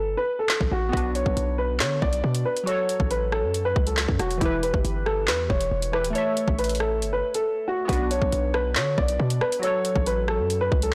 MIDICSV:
0, 0, Header, 1, 5, 480
1, 0, Start_track
1, 0, Key_signature, 2, "minor"
1, 0, Tempo, 434783
1, 1030, Time_signature, 4, 2, 24, 8
1, 12078, End_track
2, 0, Start_track
2, 0, Title_t, "Grand piano"
2, 0, Program_c, 0, 0
2, 0, Note_on_c, 0, 69, 84
2, 169, Note_off_c, 0, 69, 0
2, 191, Note_on_c, 0, 71, 84
2, 385, Note_off_c, 0, 71, 0
2, 431, Note_on_c, 0, 69, 79
2, 769, Note_off_c, 0, 69, 0
2, 797, Note_on_c, 0, 66, 86
2, 989, Note_off_c, 0, 66, 0
2, 1022, Note_on_c, 0, 66, 103
2, 1220, Note_off_c, 0, 66, 0
2, 1270, Note_on_c, 0, 73, 89
2, 1721, Note_off_c, 0, 73, 0
2, 1746, Note_on_c, 0, 71, 90
2, 1942, Note_off_c, 0, 71, 0
2, 1990, Note_on_c, 0, 73, 83
2, 2184, Note_off_c, 0, 73, 0
2, 2231, Note_on_c, 0, 74, 85
2, 2682, Note_off_c, 0, 74, 0
2, 2709, Note_on_c, 0, 71, 84
2, 2904, Note_off_c, 0, 71, 0
2, 2947, Note_on_c, 0, 73, 98
2, 3400, Note_off_c, 0, 73, 0
2, 3431, Note_on_c, 0, 71, 85
2, 3625, Note_off_c, 0, 71, 0
2, 3673, Note_on_c, 0, 69, 86
2, 4010, Note_off_c, 0, 69, 0
2, 4030, Note_on_c, 0, 71, 91
2, 4225, Note_off_c, 0, 71, 0
2, 4272, Note_on_c, 0, 69, 75
2, 4610, Note_off_c, 0, 69, 0
2, 4632, Note_on_c, 0, 66, 80
2, 4825, Note_off_c, 0, 66, 0
2, 4869, Note_on_c, 0, 64, 101
2, 5064, Note_off_c, 0, 64, 0
2, 5112, Note_on_c, 0, 71, 86
2, 5562, Note_off_c, 0, 71, 0
2, 5582, Note_on_c, 0, 69, 92
2, 5779, Note_off_c, 0, 69, 0
2, 5831, Note_on_c, 0, 71, 83
2, 6025, Note_off_c, 0, 71, 0
2, 6066, Note_on_c, 0, 73, 83
2, 6519, Note_off_c, 0, 73, 0
2, 6549, Note_on_c, 0, 71, 88
2, 6744, Note_off_c, 0, 71, 0
2, 6786, Note_on_c, 0, 73, 89
2, 7239, Note_off_c, 0, 73, 0
2, 7272, Note_on_c, 0, 71, 83
2, 7465, Note_off_c, 0, 71, 0
2, 7511, Note_on_c, 0, 69, 88
2, 7849, Note_off_c, 0, 69, 0
2, 7869, Note_on_c, 0, 71, 86
2, 8064, Note_off_c, 0, 71, 0
2, 8109, Note_on_c, 0, 69, 85
2, 8448, Note_off_c, 0, 69, 0
2, 8475, Note_on_c, 0, 66, 87
2, 8667, Note_off_c, 0, 66, 0
2, 8701, Note_on_c, 0, 66, 104
2, 8899, Note_off_c, 0, 66, 0
2, 8950, Note_on_c, 0, 73, 92
2, 9402, Note_off_c, 0, 73, 0
2, 9427, Note_on_c, 0, 71, 90
2, 9623, Note_off_c, 0, 71, 0
2, 9670, Note_on_c, 0, 73, 84
2, 9864, Note_off_c, 0, 73, 0
2, 9912, Note_on_c, 0, 74, 85
2, 10362, Note_off_c, 0, 74, 0
2, 10392, Note_on_c, 0, 71, 91
2, 10585, Note_off_c, 0, 71, 0
2, 10630, Note_on_c, 0, 73, 101
2, 11081, Note_off_c, 0, 73, 0
2, 11114, Note_on_c, 0, 71, 88
2, 11307, Note_off_c, 0, 71, 0
2, 11353, Note_on_c, 0, 69, 87
2, 11690, Note_off_c, 0, 69, 0
2, 11712, Note_on_c, 0, 71, 96
2, 11905, Note_off_c, 0, 71, 0
2, 11955, Note_on_c, 0, 69, 80
2, 12078, Note_off_c, 0, 69, 0
2, 12078, End_track
3, 0, Start_track
3, 0, Title_t, "Synth keys"
3, 0, Program_c, 1, 88
3, 985, Note_on_c, 1, 59, 66
3, 1013, Note_on_c, 1, 66, 65
3, 1042, Note_on_c, 1, 71, 59
3, 1071, Note_on_c, 1, 62, 70
3, 1259, Control_c, 1, 64, 127
3, 2889, Note_off_c, 1, 59, 0
3, 2903, Note_off_c, 1, 66, 0
3, 2909, Note_on_c, 1, 54, 68
3, 2918, Note_off_c, 1, 71, 0
3, 2933, Note_off_c, 1, 62, 0
3, 2938, Note_on_c, 1, 66, 63
3, 2966, Control_c, 1, 64, 0
3, 2966, Note_on_c, 1, 69, 66
3, 2995, Note_on_c, 1, 73, 71
3, 3164, Control_c, 1, 64, 127
3, 4811, Note_off_c, 1, 54, 0
3, 4826, Note_off_c, 1, 66, 0
3, 4832, Note_on_c, 1, 52, 62
3, 4840, Note_off_c, 1, 69, 0
3, 4855, Note_off_c, 1, 73, 0
3, 4861, Note_on_c, 1, 64, 56
3, 4885, Control_c, 1, 64, 0
3, 4888, Note_on_c, 1, 67, 62
3, 4918, Note_on_c, 1, 71, 85
3, 5085, Control_c, 1, 64, 127
3, 6497, Note_off_c, 1, 52, 0
3, 6512, Note_off_c, 1, 64, 0
3, 6526, Note_off_c, 1, 67, 0
3, 6536, Note_on_c, 1, 52, 53
3, 6541, Note_off_c, 1, 71, 0
3, 6551, Note_on_c, 1, 64, 48
3, 6564, Note_on_c, 1, 67, 46
3, 6579, Note_on_c, 1, 71, 58
3, 6737, Note_on_c, 1, 57, 66
3, 6766, Note_on_c, 1, 69, 66
3, 6783, Note_off_c, 1, 52, 0
3, 6791, Note_off_c, 1, 64, 0
3, 6795, Note_on_c, 1, 73, 65
3, 6797, Note_off_c, 1, 67, 0
3, 6804, Note_off_c, 1, 71, 0
3, 6806, Control_c, 1, 64, 0
3, 6823, Note_on_c, 1, 76, 75
3, 7006, Control_c, 1, 64, 127
3, 8645, Note_off_c, 1, 57, 0
3, 8660, Note_off_c, 1, 69, 0
3, 8667, Note_on_c, 1, 59, 68
3, 8674, Note_off_c, 1, 73, 0
3, 8688, Note_off_c, 1, 76, 0
3, 8695, Note_on_c, 1, 66, 63
3, 8723, Control_c, 1, 64, 0
3, 8723, Note_on_c, 1, 71, 61
3, 8752, Note_on_c, 1, 62, 70
3, 8910, Control_c, 1, 64, 127
3, 10570, Note_off_c, 1, 59, 0
3, 10584, Note_off_c, 1, 66, 0
3, 10590, Note_on_c, 1, 54, 68
3, 10598, Note_off_c, 1, 71, 0
3, 10613, Note_off_c, 1, 62, 0
3, 10618, Note_on_c, 1, 66, 64
3, 10645, Control_c, 1, 64, 0
3, 10647, Note_on_c, 1, 69, 68
3, 10675, Note_on_c, 1, 73, 73
3, 10868, Control_c, 1, 64, 127
3, 12078, Note_off_c, 1, 54, 0
3, 12078, Note_off_c, 1, 66, 0
3, 12078, Note_off_c, 1, 69, 0
3, 12078, Note_off_c, 1, 73, 0
3, 12078, End_track
4, 0, Start_track
4, 0, Title_t, "808-style bass"
4, 0, Program_c, 2, 38
4, 0, Note_on_c, 2, 31, 98
4, 179, Note_off_c, 2, 31, 0
4, 669, Note_on_c, 2, 33, 105
4, 785, Note_off_c, 2, 33, 0
4, 790, Note_on_c, 2, 33, 105
4, 1021, Note_off_c, 2, 33, 0
4, 1030, Note_on_c, 2, 35, 108
4, 1376, Note_off_c, 2, 35, 0
4, 1390, Note_on_c, 2, 35, 105
4, 1506, Note_off_c, 2, 35, 0
4, 1510, Note_on_c, 2, 35, 107
4, 1990, Note_on_c, 2, 50, 96
4, 2006, Note_off_c, 2, 35, 0
4, 2218, Note_off_c, 2, 50, 0
4, 2231, Note_on_c, 2, 35, 105
4, 2461, Note_off_c, 2, 35, 0
4, 2470, Note_on_c, 2, 47, 105
4, 2701, Note_off_c, 2, 47, 0
4, 3310, Note_on_c, 2, 33, 110
4, 3790, Note_on_c, 2, 42, 96
4, 3807, Note_off_c, 2, 33, 0
4, 4132, Note_off_c, 2, 42, 0
4, 4151, Note_on_c, 2, 37, 110
4, 4496, Note_off_c, 2, 37, 0
4, 4509, Note_on_c, 2, 42, 105
4, 4625, Note_off_c, 2, 42, 0
4, 4630, Note_on_c, 2, 28, 105
4, 4861, Note_off_c, 2, 28, 0
4, 4870, Note_on_c, 2, 28, 111
4, 5216, Note_off_c, 2, 28, 0
4, 5230, Note_on_c, 2, 31, 107
4, 5345, Note_off_c, 2, 31, 0
4, 5350, Note_on_c, 2, 31, 109
4, 5829, Note_on_c, 2, 40, 98
4, 5846, Note_off_c, 2, 31, 0
4, 6058, Note_off_c, 2, 40, 0
4, 6071, Note_on_c, 2, 28, 105
4, 6301, Note_off_c, 2, 28, 0
4, 6309, Note_on_c, 2, 28, 104
4, 6668, Note_on_c, 2, 26, 101
4, 6685, Note_off_c, 2, 28, 0
4, 6783, Note_off_c, 2, 26, 0
4, 7150, Note_on_c, 2, 33, 108
4, 7749, Note_on_c, 2, 31, 100
4, 7765, Note_off_c, 2, 33, 0
4, 7978, Note_off_c, 2, 31, 0
4, 8710, Note_on_c, 2, 35, 107
4, 9056, Note_off_c, 2, 35, 0
4, 9071, Note_on_c, 2, 35, 110
4, 9186, Note_off_c, 2, 35, 0
4, 9192, Note_on_c, 2, 35, 109
4, 9671, Note_on_c, 2, 50, 99
4, 9688, Note_off_c, 2, 35, 0
4, 9899, Note_off_c, 2, 50, 0
4, 9912, Note_on_c, 2, 35, 106
4, 10142, Note_off_c, 2, 35, 0
4, 10152, Note_on_c, 2, 47, 107
4, 10382, Note_off_c, 2, 47, 0
4, 10991, Note_on_c, 2, 33, 112
4, 11472, Note_on_c, 2, 42, 102
4, 11488, Note_off_c, 2, 33, 0
4, 11813, Note_off_c, 2, 42, 0
4, 11831, Note_on_c, 2, 37, 107
4, 12078, Note_off_c, 2, 37, 0
4, 12078, End_track
5, 0, Start_track
5, 0, Title_t, "Drums"
5, 544, Note_on_c, 9, 39, 96
5, 550, Note_on_c, 9, 38, 123
5, 654, Note_off_c, 9, 39, 0
5, 660, Note_off_c, 9, 38, 0
5, 670, Note_on_c, 9, 36, 91
5, 780, Note_off_c, 9, 36, 0
5, 1031, Note_on_c, 9, 36, 103
5, 1070, Note_on_c, 9, 42, 72
5, 1141, Note_off_c, 9, 36, 0
5, 1181, Note_off_c, 9, 42, 0
5, 1271, Note_on_c, 9, 42, 83
5, 1381, Note_off_c, 9, 42, 0
5, 1390, Note_on_c, 9, 36, 97
5, 1501, Note_off_c, 9, 36, 0
5, 1510, Note_on_c, 9, 42, 76
5, 1621, Note_off_c, 9, 42, 0
5, 1985, Note_on_c, 9, 39, 99
5, 1991, Note_on_c, 9, 38, 120
5, 1992, Note_on_c, 9, 42, 81
5, 2095, Note_off_c, 9, 39, 0
5, 2101, Note_off_c, 9, 38, 0
5, 2102, Note_off_c, 9, 42, 0
5, 2231, Note_on_c, 9, 36, 100
5, 2342, Note_off_c, 9, 36, 0
5, 2348, Note_on_c, 9, 42, 78
5, 2459, Note_off_c, 9, 42, 0
5, 2589, Note_on_c, 9, 42, 89
5, 2700, Note_off_c, 9, 42, 0
5, 2832, Note_on_c, 9, 42, 85
5, 2943, Note_off_c, 9, 42, 0
5, 2951, Note_on_c, 9, 42, 69
5, 3061, Note_off_c, 9, 42, 0
5, 3192, Note_on_c, 9, 42, 82
5, 3302, Note_off_c, 9, 42, 0
5, 3310, Note_on_c, 9, 36, 99
5, 3421, Note_off_c, 9, 36, 0
5, 3429, Note_on_c, 9, 42, 77
5, 3540, Note_off_c, 9, 42, 0
5, 3669, Note_on_c, 9, 37, 102
5, 3780, Note_off_c, 9, 37, 0
5, 3912, Note_on_c, 9, 42, 83
5, 4022, Note_off_c, 9, 42, 0
5, 4151, Note_on_c, 9, 36, 100
5, 4262, Note_off_c, 9, 36, 0
5, 4269, Note_on_c, 9, 42, 79
5, 4379, Note_off_c, 9, 42, 0
5, 4384, Note_on_c, 9, 39, 100
5, 4390, Note_on_c, 9, 38, 121
5, 4391, Note_on_c, 9, 42, 92
5, 4494, Note_off_c, 9, 39, 0
5, 4500, Note_off_c, 9, 38, 0
5, 4502, Note_off_c, 9, 42, 0
5, 4510, Note_on_c, 9, 36, 92
5, 4620, Note_off_c, 9, 36, 0
5, 4631, Note_on_c, 9, 37, 97
5, 4631, Note_on_c, 9, 42, 84
5, 4741, Note_off_c, 9, 42, 0
5, 4742, Note_off_c, 9, 37, 0
5, 4753, Note_on_c, 9, 42, 80
5, 4864, Note_off_c, 9, 42, 0
5, 4871, Note_on_c, 9, 36, 101
5, 4871, Note_on_c, 9, 42, 70
5, 4981, Note_off_c, 9, 36, 0
5, 4982, Note_off_c, 9, 42, 0
5, 5112, Note_on_c, 9, 42, 83
5, 5222, Note_off_c, 9, 42, 0
5, 5230, Note_on_c, 9, 36, 99
5, 5341, Note_off_c, 9, 36, 0
5, 5351, Note_on_c, 9, 42, 76
5, 5461, Note_off_c, 9, 42, 0
5, 5590, Note_on_c, 9, 37, 98
5, 5701, Note_off_c, 9, 37, 0
5, 5826, Note_on_c, 9, 39, 97
5, 5832, Note_on_c, 9, 38, 117
5, 5833, Note_on_c, 9, 42, 84
5, 5936, Note_off_c, 9, 39, 0
5, 5942, Note_off_c, 9, 38, 0
5, 5943, Note_off_c, 9, 42, 0
5, 6071, Note_on_c, 9, 36, 98
5, 6182, Note_off_c, 9, 36, 0
5, 6188, Note_on_c, 9, 42, 77
5, 6299, Note_off_c, 9, 42, 0
5, 6429, Note_on_c, 9, 42, 92
5, 6540, Note_off_c, 9, 42, 0
5, 6551, Note_on_c, 9, 37, 96
5, 6661, Note_off_c, 9, 37, 0
5, 6673, Note_on_c, 9, 42, 84
5, 6783, Note_off_c, 9, 42, 0
5, 6791, Note_on_c, 9, 42, 71
5, 6902, Note_off_c, 9, 42, 0
5, 7031, Note_on_c, 9, 42, 84
5, 7141, Note_off_c, 9, 42, 0
5, 7150, Note_on_c, 9, 36, 98
5, 7260, Note_off_c, 9, 36, 0
5, 7271, Note_on_c, 9, 42, 64
5, 7331, Note_off_c, 9, 42, 0
5, 7331, Note_on_c, 9, 42, 64
5, 7391, Note_off_c, 9, 42, 0
5, 7391, Note_on_c, 9, 42, 67
5, 7450, Note_off_c, 9, 42, 0
5, 7450, Note_on_c, 9, 42, 66
5, 7509, Note_on_c, 9, 37, 102
5, 7561, Note_off_c, 9, 42, 0
5, 7620, Note_off_c, 9, 37, 0
5, 7752, Note_on_c, 9, 42, 85
5, 7863, Note_off_c, 9, 42, 0
5, 8108, Note_on_c, 9, 42, 78
5, 8218, Note_off_c, 9, 42, 0
5, 8710, Note_on_c, 9, 36, 105
5, 8711, Note_on_c, 9, 42, 70
5, 8751, Note_off_c, 9, 42, 0
5, 8751, Note_on_c, 9, 42, 78
5, 8821, Note_off_c, 9, 36, 0
5, 8862, Note_off_c, 9, 42, 0
5, 8951, Note_on_c, 9, 42, 84
5, 9062, Note_off_c, 9, 42, 0
5, 9071, Note_on_c, 9, 36, 99
5, 9181, Note_off_c, 9, 36, 0
5, 9190, Note_on_c, 9, 42, 77
5, 9300, Note_off_c, 9, 42, 0
5, 9429, Note_on_c, 9, 37, 102
5, 9540, Note_off_c, 9, 37, 0
5, 9666, Note_on_c, 9, 39, 94
5, 9672, Note_on_c, 9, 38, 121
5, 9672, Note_on_c, 9, 42, 82
5, 9776, Note_off_c, 9, 39, 0
5, 9782, Note_off_c, 9, 38, 0
5, 9783, Note_off_c, 9, 42, 0
5, 9912, Note_on_c, 9, 36, 99
5, 10022, Note_off_c, 9, 36, 0
5, 10029, Note_on_c, 9, 42, 81
5, 10139, Note_off_c, 9, 42, 0
5, 10270, Note_on_c, 9, 42, 89
5, 10381, Note_off_c, 9, 42, 0
5, 10392, Note_on_c, 9, 37, 100
5, 10502, Note_off_c, 9, 37, 0
5, 10513, Note_on_c, 9, 42, 89
5, 10624, Note_off_c, 9, 42, 0
5, 10631, Note_on_c, 9, 42, 73
5, 10741, Note_off_c, 9, 42, 0
5, 10872, Note_on_c, 9, 42, 85
5, 10982, Note_off_c, 9, 42, 0
5, 10991, Note_on_c, 9, 36, 98
5, 11101, Note_off_c, 9, 36, 0
5, 11111, Note_on_c, 9, 42, 75
5, 11221, Note_off_c, 9, 42, 0
5, 11350, Note_on_c, 9, 37, 100
5, 11460, Note_off_c, 9, 37, 0
5, 11592, Note_on_c, 9, 42, 87
5, 11703, Note_off_c, 9, 42, 0
5, 11832, Note_on_c, 9, 36, 99
5, 11942, Note_off_c, 9, 36, 0
5, 11948, Note_on_c, 9, 42, 81
5, 12058, Note_off_c, 9, 42, 0
5, 12078, End_track
0, 0, End_of_file